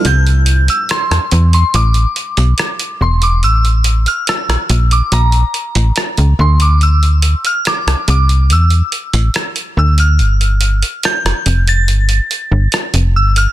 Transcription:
<<
  \new Staff \with { instrumentName = "Synth bell" } { \time 4/4 \key d \dorian \tempo 4 = 71 g'''8. e'''16 c'''8. c'''16 d'''4. c'''16 d'''16 | e'''8. f'''16 e'''8. d'''16 bes''4. c'''16 d'''16 | e'''8. f'''16 d'''8 d'''8 e'''4 r8 e'''16 f'''16~ | f'''4 g'''8. a'''4. r16 e'''16 f'''16 | }
  \new Staff \with { instrumentName = "FM bass" } { \clef bass \time 4/4 \key d \dorian c,4 r16 e,16 e,8 a,,8 r16 b,,16 r8 e,,8 | a,,4 r16 bes,,16 bes,,8 bes,,8 r16 a,,16 r16 cis,16 d,8~ | d,4 r16 c,16 c,8 e,8 r16 a,,16 r8 d,8 | g,,4 r16 f,,16 f,,8 g,,8 r16 g,,16 r16 f,,16 g,,8 | }
  \new DrumStaff \with { instrumentName = "Drums" } \drummode { \time 4/4 hh16 hh16 hh16 hh16 <hh ss>16 <hh ss>16 hh16 hh16 hh16 hh16 hh16 hh16 <hh ss>16 hh8 hh16 | hh16 hh16 hh16 hh16 <hh ss>16 <hh ss>16 hh16 hh16 hh16 hh16 hh16 hh16 <hh ss>16 hh8 hh16 | hh16 hh16 hh16 hh16 <hh ss>16 <hh ss>16 hh16 hh16 hh16 hh16 hh16 hh16 <hh ss>16 hh8 hh16 | hh16 hh16 hh16 hh16 <hh ss>16 <hh ss>16 hh16 hh16 hh16 hh16 hh8 <hh ss>16 hh8 hh16 | }
>>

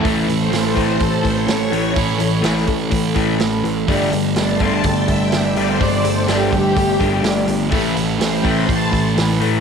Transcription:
<<
  \new Staff \with { instrumentName = "String machine" } { \time 4/4 \key a \major \tempo 4 = 125 \tuplet 3/2 { r4 c''8 a'8 c''8 c''8 a'8 c''8 cis''8~ } cis''4~ | cis''4.~ cis''16 r2 r16 | r4 \tuplet 3/2 { a''8 c'''8 a''8 g''8 e''8 g''8 e''8 d''8 c''8 } | \tuplet 3/2 { d''8 c''8 a'8 g'8 g'4~ } g'2~ |
g'16 r8. c''16 g''16 c'''8 a''8 r4. | }
  \new Staff \with { instrumentName = "Twelve-string acoustic guitar" } { \time 4/4 \key a \major <a, e a cis' a'>8 <a cis' a'>8 <a, e a cis' a'>8 <a cis' a'>8 <e a cis' a'>4 <a, e a cis' a'>8 <a cis'>8 | <a, e a cis' a'>8 <a cis' a'>8 <a, e a cis' a'>8 <a cis' a'>8 <e a cis' a'>4 <a, e a cis' a'>8 <a cis' a'>8 | <g a d' g'>8 <a d' g'>8 <g a d' g'>8 <a d' g'>8 <g a d' g'>4 <g a d' g'>8 <a g'>8 | <g a d' g'>8 <a g'>8 <g a d' g'>8 <a d' g'>8 <g a d' g'>4 <g a d' g'>8 <a d' g'>8 |
<a, e a cis' e'>8 <a cis' e'>8 <a, e a cis' e'>8 <a cis' e'>8 <e a cis' e'>4 <a, e a cis' e'>8 <a cis' e'>8 | }
  \new Staff \with { instrumentName = "Distorted electric guitar" } { \clef bass \time 4/4 \key a \major <a, e a>1 | <a, e a>1 | <g, d g>1 | <g, d g>1 |
<a, e a>1 | }
  \new Staff \with { instrumentName = "Overdriven electric guitar" } { \clef bass \time 4/4 \key a \major <a, e a>8 <a, e>8 <a, e>8 <a, e a>8 <a, e>8 <a, e>8 <a, e>8 <a, e a>8 | <a, e>8 <a, e>8 <a, e a>8 <a, e>8 <a, e>8 <a, e a>8 <a, e>8 <a, e>8 | <g a d'>8 <g a>8 <g a>8 <g a d'>8 <g a>8 <g a>8 <g a>8 <g a d'>8 | <g a>8 <g a>8 <g a d'>8 <g a>8 <g a>8 <g a d'>8 <g a>8 <g a>8 |
<a, e a>8 <a, e>8 <a, e>8 <a, e a>8 <a, e>8 <a, e>8 <a, e>8 <a, e a>8 | }
  \new Staff \with { instrumentName = "Picked electric bass" } { \clef bass \time 4/4 \key a \major a,,8 a,,8 a,,4 a,,8 a,,8 a,,8 a,,8 | a,,8 a,,8 a,,8 a,,8 a,,8 a,,8 a,,8 a,,8 | g,,8 g,,8 g,,4 g,,8 g,,8 g,,8 g,,8 | g,,8 g,,8 g,,8 g,,8 g,,8 g,,8 g,,8 g,,8 |
a,,8 a,,8 a,,4 a,,8 a,,8 a,,8 a,,8 | }
  \new DrumStaff \with { instrumentName = "Drums" } \drummode { \time 4/4 <hho bd>8 hho8 <hho sn>8 <hho bd>8 <hho bd>8 <hho bd>8 <hho sn>8 hho8 | <hho bd>8 hho8 <hho sn>16 sn16 <hho bd>8 <hho bd>8 <hho bd>8 <hho sn>8 hho8 | <hho bd>8 hho8 <hho sn>8 <hho bd>8 <hho bd>8 <hho bd>8 <hho sn>8 hho8 | <hho bd>8 hho8 <hho sn>8 <hho bd>8 <hho bd>8 <hho bd>8 <hho sn>8 hho8 |
<hho bd>8 hho8 <hho sn>8 <hho bd>8 <hho bd>8 <hho bd>8 <hho sn>8 hho8 | }
>>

